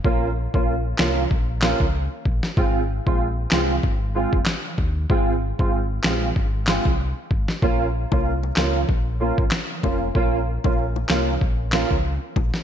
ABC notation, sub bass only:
X:1
M:4/4
L:1/16
Q:"Swing 16ths" 1/4=95
K:Bbm
V:1 name="Sub bass" clef=bass
B,,,3 B,,,3 C,,2 B,,,3 D,,2 z B,,, z | A,,,3 B,,,3 C,,2 A,,,3 G,,, z2 E,,2 | A,,,3 A,,,3 B,,,2 A,,,3 C,,2 z A,,, z | B,,,3 C,,3 D,,2 B,,,3 A,,, z2 F,,,2 |
B,,,3 B,,,3 C,,2 B,,,3 D,,2 z B,,, z |]